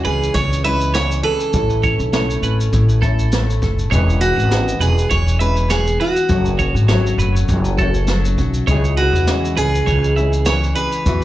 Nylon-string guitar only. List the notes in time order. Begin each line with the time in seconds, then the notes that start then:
Already playing: C#3 E3 E4 G#4
0.07 C#4
0.37 C#3
0.66 E4
0.97 E3
1.25 G#4
1.55 A2 A4
1.85 E4
2.14 A3
2.44 C#4
2.74 A2
3.04 E4
3.34 A3
3.63 A4
3.93 E3 G#4
4.23 C#4
4.53 B3
4.80 B3
5.11 E3
5.41 C#4
5.70 B3
6.01 G#4
6.31 F#2 F#4
6.61 C#4
6.92 F#3
7.21 A3
7.51 F#2
7.80 C#4
8.11 F#3
8.41 F#4
8.70 C#3 G#4
8.99 E4
9.29 E3
9.59 C#4
9.88 C#3
10.18 E4
10.48 E3
10.78 G#4
11.06 E3 F#4